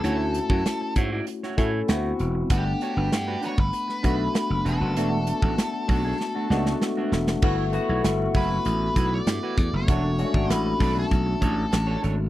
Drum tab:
CC |----------------|----------------|----------------|x---------------|
HH |x-x-x-x-x-x-x-x-|x-x-x-x-x-x-x-x-|x-x-x-o---------|--x-x-o-x-x-x-x-|
SD |----o----o--o---|----o----o--o---|----o---o-ooo-oo|----o-------o---|
BD |---o--o---o-----|o------o--o-----|---o--o---------|o-----o---o---o-|

CC |----------------|
HH |x-x-x-o-x-x-x-x-|
SD |----o-------o---|
BD |o--o--o-o-o-----|